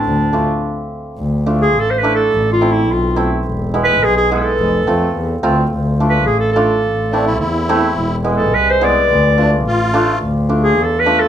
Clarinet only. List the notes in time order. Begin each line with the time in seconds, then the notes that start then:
Already playing: D4
1.62 G#4
1.79 A4
1.90 C5
1.98 B4
2.15 A4
2.52 F4
2.72 E4
2.92 F4
3.84 B4
4.04 G#4
4.17 G#4
4.32 A4
6.09 B4
6.26 G#4
6.40 A4
6.52 A4
8.34 A4
8.54 B4
8.70 C5
8.84 D5
10.63 G#4
10.83 A4
11.00 B4
11.20 A4